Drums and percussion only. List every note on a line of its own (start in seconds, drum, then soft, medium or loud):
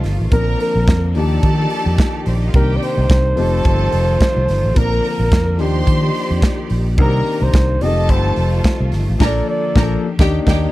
0.04 snare soft
0.04 open hi-hat medium
0.32 kick loud
0.32 closed hi-hat medium
0.60 open hi-hat medium
0.88 kick loud
0.88 snare loud
0.88 closed hi-hat medium
1.15 open hi-hat medium
1.43 kick loud
1.43 closed hi-hat medium
1.70 open hi-hat medium
1.98 kick loud
1.98 snare loud
1.98 closed hi-hat medium
2.26 open hi-hat medium
2.54 kick loud
2.54 closed hi-hat medium
2.83 open hi-hat medium
3.10 kick loud
3.10 snare loud
3.10 closed hi-hat medium
3.37 open hi-hat medium
3.65 kick loud
3.65 closed hi-hat medium
3.92 open hi-hat medium
4.21 kick loud
4.21 snare loud
4.21 closed hi-hat medium
4.48 snare soft
4.48 open hi-hat medium
4.76 kick loud
4.76 closed hi-hat medium
5.05 open hi-hat medium
5.32 kick loud
5.32 snare loud
5.32 closed hi-hat medium
5.59 open hi-hat medium
5.87 kick loud
5.87 closed hi-hat medium
6.14 open hi-hat medium
6.42 kick loud
6.42 snare loud
6.42 closed hi-hat medium
6.70 open hi-hat medium
6.98 kick loud
6.98 closed hi-hat medium
7.26 open hi-hat medium
7.54 kick loud
7.54 snare loud
7.54 closed hi-hat medium
7.81 open hi-hat medium
8.09 kick loud
8.09 closed hi-hat medium
8.36 open hi-hat medium
8.64 kick loud
8.64 snare loud
8.64 closed hi-hat medium
8.92 snare soft
8.92 open hi-hat medium
9.20 kick loud
9.20 snare loud
9.20 crash medium
9.76 kick loud
9.76 snare loud
10.19 kick loud
10.19 snare loud
10.47 kick loud
10.47 snare loud
10.47 crash medium